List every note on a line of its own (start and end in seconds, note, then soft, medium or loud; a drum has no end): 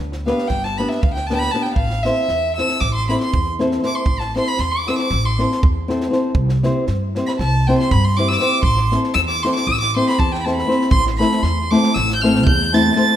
0.00 0.30 D2 medium
0.12 snare soft
0.26 0.46 B3 medium
0.26 0.47 D4 medium
0.26 0.47 G4 medium
0.26 0.47 B4 medium
0.26 0.49 F5 medium
0.26 snare soft
0.38 snare soft
0.48 0.82 G1 medium
0.48 0.66 G5 medium
0.48 kick medium
0.48 snare soft
0.64 0.79 A5 medium
0.64 snare soft
0.78 0.99 B3 medium
0.78 1.00 D4 medium
0.78 1.00 G4 medium
0.78 1.00 B4 medium
0.78 0.90 B5 medium
0.78 snare soft
0.89 1.03 E5 medium
0.89 snare soft
1.02 1.47 D2 medium
1.02 1.14 F5 medium
1.02 kick medium
1.14 1.28 G5 medium
1.14 snare soft
1.27 1.49 B3 medium
1.27 1.50 D4 medium
1.27 1.49 G4 medium
1.27 1.34 A5 medium
1.27 snare soft
1.32 1.50 B4 medium
1.32 1.36 G5 medium
1.32 1.40 A5 medium
1.39 1.53 B5 medium
1.39 snare soft
1.51 1.73 B3 medium
1.51 1.73 D4 medium
1.51 1.73 G4 soft
1.51 1.64 A5 medium
1.51 snare soft
1.55 1.73 B4 medium
1.62 1.74 G5 medium
1.62 snare soft
1.74 2.08 A1 medium
1.74 2.04 F5 loud
1.74 kick medium
1.91 snare soft
2.03 2.25 C4 medium
2.03 2.25 E4 medium
2.03 2.26 A4 medium
2.03 2.25 C5 medium
2.03 2.57 E5 loud
2.03 snare soft
2.28 2.60 E2 medium
2.28 snare soft
2.57 2.78 C4 medium
2.57 2.78 E4 soft
2.57 2.78 A4 medium
2.57 2.78 C5 medium
2.57 2.82 E6 loud
2.57 snare soft
2.68 snare soft
2.80 3.13 A1 medium
2.80 2.94 D6 medium
2.80 kick medium
2.80 snare soft
2.95 3.09 C6 loud
3.09 3.29 C4 medium
3.09 3.30 E4 medium
3.09 3.30 A4 medium
3.09 3.30 C5 medium
3.09 3.21 B5 medium
3.09 snare soft
3.21 3.45 C6 medium
3.21 snare soft
3.34 3.77 E2 medium
3.34 kick loud
3.59 3.79 C4 medium
3.59 3.79 E4 medium
3.59 3.80 A4 medium
3.59 3.80 C5 medium
3.59 snare soft
3.72 snare soft
3.83 4.02 C4 medium
3.83 4.02 E4 soft
3.83 4.03 A4 medium
3.83 4.03 C5 medium
3.83 3.97 D6 medium
3.83 snare soft
3.95 4.21 C6 medium
4.06 4.37 A1 medium
4.06 kick medium
4.19 4.34 A5 medium
4.19 snare soft
4.36 4.55 C4 medium
4.36 4.55 E4 medium
4.36 4.55 A4 medium
4.36 4.56 C5 medium
4.36 4.49 C6 loud
4.36 snare soft
4.48 4.61 B5 loud
4.58 4.90 E2 medium
4.58 4.73 C6 medium
4.58 snare soft
4.72 4.89 D6 medium
4.87 5.08 C4 medium
4.87 5.08 E4 medium
4.87 5.08 A4 medium
4.87 5.09 C5 medium
4.87 4.98 E6 loud
4.87 snare soft
4.99 5.27 D6 medium
4.99 snare soft
5.10 5.43 A1 medium
5.10 kick medium
5.10 snare soft
5.25 5.52 C6 medium
5.39 5.59 C4 medium
5.39 5.59 E4 medium
5.39 5.59 A4 medium
5.39 5.60 C5 medium
5.39 snare soft
5.52 snare soft
5.63 6.07 E2 medium
5.63 kick loud
5.88 6.08 C4 medium
5.88 6.09 E4 medium
5.88 6.09 A4 medium
5.88 6.09 C5 medium
5.88 snare soft
6.01 snare soft
6.10 6.30 C4 medium
6.10 6.31 E4 medium
6.10 6.31 A4 medium
6.10 6.32 C5 medium
6.10 snare soft
6.35 6.66 C2 medium
6.35 kick loud
6.49 snare soft
6.63 6.84 C4 medium
6.63 6.84 E4 medium
6.63 6.84 G4 medium
6.63 6.84 C5 medium
6.63 snare soft
6.87 7.19 G2 medium
6.87 snare soft
7.15 7.36 C4 medium
7.15 7.36 E4 medium
7.15 7.37 G4 medium
7.15 7.37 C5 medium
7.15 snare soft
7.27 7.32 B5 medium
7.27 snare soft
7.39 7.72 C2 medium
7.39 7.68 A5 medium
7.39 kick medium
7.39 snare soft
7.67 7.88 C4 medium
7.67 7.89 E4 medium
7.67 7.89 G4 medium
7.67 7.89 C5 medium
7.67 7.78 G5 medium
7.67 snare soft
7.79 7.93 C6 medium
7.79 snare soft
7.91 8.36 G2 loud
7.91 8.06 B5 medium
7.91 kick loud
8.04 8.18 C6 medium
8.16 8.37 C4 medium
8.16 8.38 E4 medium
8.16 8.38 G4 medium
8.16 8.38 C5 medium
8.16 8.30 D6 medium
8.16 snare soft
8.28 8.34 E6 loud
8.28 snare soft
8.33 8.37 D6 medium
8.33 8.43 E6 loud
8.40 8.60 C4 medium
8.40 8.60 E4 medium
8.40 8.60 G4 medium
8.40 8.60 C5 medium
8.40 8.64 D6 loud
8.40 snare soft
8.63 8.95 A1 medium
8.63 8.91 C6 loud
8.63 kick medium
8.77 snare soft
8.92 9.12 C4 medium
8.92 9.12 E4 medium
8.92 9.12 A4 medium
8.92 9.12 C5 medium
8.92 snare soft
9.04 snare soft
9.14 9.46 E2 loud
9.14 9.21 E6 loud
9.14 snare soft
9.29 9.44 D6 loud
9.29 snare soft
9.43 9.64 C4 medium
9.43 9.64 E4 medium
9.43 9.64 A4 medium
9.43 9.64 C5 medium
9.43 9.55 C6 loud
9.43 snare soft
9.55 9.69 D6 medium
9.55 snare soft
9.67 9.98 A1 medium
9.67 9.80 E6 loud
9.67 kick medium
9.67 snare soft
9.80 9.95 D6 medium
9.80 snare soft
9.96 10.16 C4 medium
9.96 10.16 E4 medium
9.96 10.16 A4 medium
9.96 10.17 C5 medium
9.96 10.09 C6 medium
10.08 10.11 B5 medium
10.08 10.14 C6 medium
10.08 snare soft
10.13 10.20 B5 medium
10.19 10.62 E2 loud
10.19 10.34 A5 medium
10.19 kick medium
10.32 10.40 G5 medium
10.32 snare soft
10.40 10.46 B5 medium
10.44 10.65 C4 medium
10.44 10.65 E4 medium
10.44 10.65 A4 medium
10.44 10.65 C5 medium
10.44 10.54 A5 medium
10.44 snare soft
10.55 10.87 B5 medium
10.55 snare soft
10.67 10.87 C4 medium
10.67 10.87 E4 medium
10.67 10.87 A4 medium
10.67 10.87 C5 medium
10.67 snare soft
10.81 snare soft
10.91 11.22 A1 loud
10.91 11.04 C6 loud
10.91 kick loud
11.07 snare soft
11.18 11.39 A3 medium
11.18 11.39 C4 medium
11.18 11.39 E4 medium
11.18 11.39 A4 medium
11.18 11.40 C5 medium
11.18 11.44 B5 loud
11.18 snare soft
11.32 snare soft
11.42 11.74 E2 medium
11.42 11.72 C6 medium
11.42 snare soft
11.70 11.91 A3 medium
11.70 11.91 C4 medium
11.70 11.91 E4 medium
11.70 11.91 A4 medium
11.70 11.92 C5 medium
11.70 11.96 D6 loud
11.70 snare soft
11.83 snare soft
11.94 12.47 A1 loud
11.94 12.14 E6 loud
11.94 snare soft
12.10 snare soft
12.15 12.23 G6 medium
12.21 12.42 A3 medium
12.21 12.42 C4 medium
12.21 12.43 E4 medium
12.21 12.43 A4 medium
12.21 12.43 C5 medium
12.21 12.45 F6 loud
12.21 snare soft
12.36 snare soft
12.46 12.89 E2 loud
12.46 12.76 G6 loud
12.46 kick loud
12.72 12.91 A3 medium
12.72 12.91 C4 medium
12.72 12.92 E4 medium
12.72 12.92 A4 medium
12.72 12.92 C5 medium
12.72 12.96 A6 loud
12.72 snare soft
12.96 13.14 A3 medium
12.96 13.14 C4 medium
12.96 13.15 E4 medium
12.96 13.15 A4 medium
12.96 13.15 C5 medium
12.96 13.16 A6 loud
12.96 snare soft